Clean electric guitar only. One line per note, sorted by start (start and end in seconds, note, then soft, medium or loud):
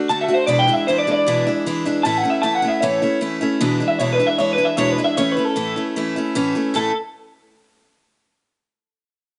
0.09 0.21 A5 loud
0.21 0.34 E5 medium
0.34 0.46 C5 medium
0.47 0.60 D5 loud
0.59 0.73 G5 loud
0.73 0.86 E5 loud
0.87 0.98 C5 loud
0.98 1.10 D5 medium
1.12 1.50 D5 loud
2.03 2.18 A5 loud
2.18 2.30 F#5 loud
2.30 2.43 E5 medium
2.42 2.55 A5 loud
2.55 2.68 F#5 medium
2.68 2.80 E5 medium
2.80 3.20 C#5 loud
3.88 3.99 E5 medium
3.99 4.12 C#5 medium
4.13 4.26 B4 medium
4.27 4.38 E5 medium
4.38 4.51 C#5 loud
4.53 4.65 B4 medium
4.65 4.77 E5 medium
4.78 4.90 C#5 medium
4.90 5.04 B4 medium
5.04 5.17 E5 medium
5.17 5.32 C#5 loud
5.32 5.45 B4 loud
5.45 5.82 A4 medium
6.76 6.94 A4 medium